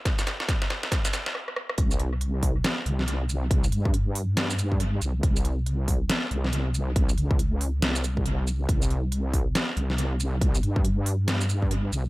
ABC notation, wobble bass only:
X:1
M:4/4
L:1/8
Q:"Swing 16ths" 1/4=139
K:Dblyd
V:1 name="Wobble bass" clef=bass
z8 | C,,4 z C,,3- | C,, G,,6 C,, | C,,4 z C,,3- |
C,, D,,3 C,,2 C,,2 | C,,4 z C,,3- | C,, G,,6 C,, |]